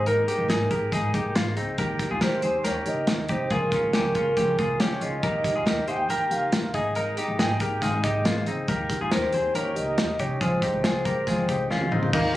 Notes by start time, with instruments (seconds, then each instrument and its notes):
Already playing: upright bass G#1
0.05 steel-string acoustic guitar G#3 A#3 D#4 G#4, clean electric guitar D#4 A#4, soft synth lead A#4, closed hi-hat
0.28 steel-string acoustic guitar A#3 D#4 G#4, clean electric guitar D#4 G4, closed hi-hat
0.38 upright bass G#1
0.48 upright bass G#1, steel-string acoustic guitar G#3 A#3 D#4 G#4, clean electric guitar D#4 G#4, snare, closed hi-hat
0.70 upright bass G#1, steel-string acoustic guitar A#3 D#4 G#4, clean electric guitar G4 A#4, kick, closed hi-hat
0.92 upright bass G#1, steel-string acoustic guitar G#3 A#3 D#4 G#4, clean electric guitar D#4 G#4, kick, snare, closed hi-hat
1.13 upright bass G#1, steel-string acoustic guitar A#3 D#4 G#4, clean electric guitar D#4 G4, kick, closed hi-hat
1.35 upright bass G#1, steel-string acoustic guitar G#3 A#3 D#4, clean electric guitar A#3 F4, snare, closed hi-hat
1.56 upright bass C#2, steel-string acoustic guitar A#3 D#4 G#4, clean electric guitar C4 D#4, closed hi-hat
1.78 upright bass D#2, steel-string acoustic guitar D#3 A#3 D#4 G4, clean electric guitar G4 A#4, kick, closed hi-hat
1.99 steel-string acoustic guitar A#3 D#4 G4, kick, closed hi-hat
2.11 upright bass D#2, clean electric guitar F4 G#4
2.21 upright bass D#2, steel-string acoustic guitar D#3 A#3 D#4 G4, clean electric guitar G4 A#4, soft synth lead C5, snare, closed hi-hat
2.42 upright bass D#2, steel-string acoustic guitar A#3 D#4 G4, clean electric guitar G#4 C5, closed hi-hat
2.64 upright bass D#2, steel-string acoustic guitar D#3 A#3 D#4 G4, clean electric guitar G4 A#4, soft synth lead C#5, snare, closed hi-hat
2.85 upright bass C#2, steel-string acoustic guitar A#3 D#4 G4, soft synth lead D#5, closed hi-hat
3.07 upright bass D#2, steel-string acoustic guitar D#3 A#3 D#4 G4, snare, closed hi-hat
3.29 upright bass C2, steel-string acoustic guitar A#3 D#4 G4, clean electric guitar D#4 G4, soft synth lead C5, kick, closed hi-hat
3.50 upright bass C#2, steel-string acoustic guitar C#3 F3 G#3 C4 F4, clean electric guitar F4 G#4, soft synth lead A#4, kick, closed hi-hat
3.72 steel-string acoustic guitar G#3 C4 F4, clean electric guitar C#4 F4, kick, closed hi-hat
3.83 upright bass C#2
3.93 upright bass C#2, steel-string acoustic guitar F3 G#3 C4 F4, clean electric guitar C#4 G4, snare, closed hi-hat
4.15 upright bass C#2, steel-string acoustic guitar G#3 C4 F4, clean electric guitar C#4 F4, kick, closed hi-hat
4.37 upright bass C#2, steel-string acoustic guitar C#3 F3 G#3 C4 F4, clean electric guitar C#4 G4, kick, closed hi-hat
4.58 upright bass C2, steel-string acoustic guitar G#3 C4 F4, clean electric guitar F4 G#4, kick, closed hi-hat
4.80 upright bass C#2, steel-string acoustic guitar F3 G#3 C4 F4, clean electric guitar C#4 G4, soft synth lead C#5, snare, closed hi-hat
5.01 upright bass C#2, steel-string acoustic guitar G#3 C4 F4, clean electric guitar C#4 F4, soft synth lead D#5, closed hi-hat
5.23 upright bass D#2, steel-string acoustic guitar D#3 A#3 D#4 G4, clean electric guitar G4 A#4, kick, closed hi-hat
5.44 steel-string acoustic guitar A#3 D#4 G4, kick, closed hi-hat
5.55 upright bass D#2, clean electric guitar F4 G#4
5.66 upright bass D#2, steel-string acoustic guitar D#3 A#3 D#4 G4, clean electric guitar G4 A#4, snare, closed hi-hat
5.87 upright bass D#2, steel-string acoustic guitar A#3 D#4 G4, clean electric guitar G#4 C5, soft synth lead G5, closed hi-hat
6.09 upright bass D#2, steel-string acoustic guitar D#3 A#3 D#4 G4, clean electric guitar G4 A#4, closed hi-hat
6.30 upright bass C#2, steel-string acoustic guitar A#3 D#4 G4, soft synth lead F5, closed hi-hat
6.52 upright bass D#2, steel-string acoustic guitar D#3 A#3 D#4 G4, snare, closed hi-hat
6.73 upright bass G#1, steel-string acoustic guitar A#3 D#4 G#4, clean electric guitar D#4 G#4, soft synth lead D#5, kick, closed hi-hat
6.95 steel-string acoustic guitar G#3 A#3 D#4 G#4, clean electric guitar D#4 A#4, closed hi-hat
7.17 steel-string acoustic guitar A#3 D#4 G#4, clean electric guitar D#4 G4, closed hi-hat
7.28 upright bass G#1
7.38 upright bass G#1, steel-string acoustic guitar G#3 A#3 D#4 G#4, clean electric guitar D#4 G#4, soft synth lead G5, snare, closed hi-hat
7.60 upright bass G#1, steel-string acoustic guitar A#3 D#4 G#4, clean electric guitar G4 A#4, kick, closed hi-hat
7.82 upright bass G#1, steel-string acoustic guitar G#3 A#3 D#4 G#4, clean electric guitar D#4 G#4, soft synth lead F5, kick, snare, closed hi-hat
8.03 upright bass G#1, steel-string acoustic guitar A#3 D#4 G#4, clean electric guitar D#4 G4, soft synth lead D#5, kick, closed hi-hat
8.25 upright bass G#1, steel-string acoustic guitar G#3 A#3 D#4 G#4, clean electric guitar A#3 F4, snare, closed hi-hat
8.46 upright bass C#2, steel-string acoustic guitar A#3 D#4 G#4, clean electric guitar C4 D#4, closed hi-hat
8.68 upright bass D#2, steel-string acoustic guitar D#3 A#3 D#4 G4, clean electric guitar G4 A#4, kick, closed hi-hat
8.89 steel-string acoustic guitar A#3 D#4 G4, kick, closed hi-hat
9.01 upright bass D#2, clean electric guitar F4 G#4
9.11 upright bass D#2, steel-string acoustic guitar D#3 A#3 D#4 G4, clean electric guitar G4 A#4, soft synth lead C5, snare, closed hi-hat
9.33 upright bass D#2, steel-string acoustic guitar A#3 D#4 G4, clean electric guitar G#4 C5, closed hi-hat
9.54 upright bass D#2, steel-string acoustic guitar D#3 A#3 D#4 G4, clean electric guitar G4 A#4, soft synth lead C#5, closed hi-hat
9.75 upright bass C#2, steel-string acoustic guitar A#3 D#4 G4, soft synth lead D#5, closed hi-hat
9.97 upright bass D#2, steel-string acoustic guitar D#3 A#3 D#4 G4, snare, closed hi-hat
10.18 upright bass C2, steel-string acoustic guitar A#3 D#4 G4, clean electric guitar D#4 G4, soft synth lead C#5, kick, closed hi-hat
10.41 upright bass C#2, steel-string acoustic guitar C#3 F3 G#3 C4 F4, clean electric guitar F4 G#4, soft synth lead C5, kick, closed hi-hat
10.62 steel-string acoustic guitar G#3 C4 F4, clean electric guitar D#4 G4, kick, closed hi-hat
10.74 upright bass C#2
10.84 upright bass C#2, steel-string acoustic guitar F3 G#3 C4 F4, clean electric guitar F4 G#4, snare, closed hi-hat
11.05 upright bass C#2, steel-string acoustic guitar G#3 C4 F4, clean electric guitar G4 A#4, kick, closed hi-hat
11.27 upright bass C#2, steel-string acoustic guitar C#3 F3 G#3 C4 F4, clean electric guitar F4 G#4, kick, snare, closed hi-hat
11.49 upright bass C2, steel-string acoustic guitar G#3 C4 F4, clean electric guitar D#4 G4, kick, closed hi-hat
11.70 upright bass C#2, steel-string acoustic guitar F3 G#3 C4 F4, clean electric guitar C#4 F4, soft synth lead F5, snare
11.81 high tom
11.91 upright bass C#2, steel-string acoustic guitar G#3 C4 F4, clean electric guitar C4 D#4, mid tom
12.03 floor tom
12.13 upright bass D#2, steel-string acoustic guitar D#3 A#3 D#4 G4, clean electric guitar A#3 D#4, soft synth lead F5, kick, crash